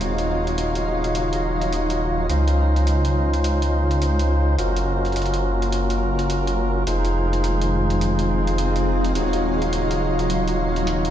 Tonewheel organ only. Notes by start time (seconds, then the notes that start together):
0.01 D#4 F4 F#4 C#5
2.30 C#4 D#4 F4 C5
4.58 C#4 F4 F#4 A#4
6.87 D#4 F4 G#4 C5
9.15 D#4 F4 F#4 C#5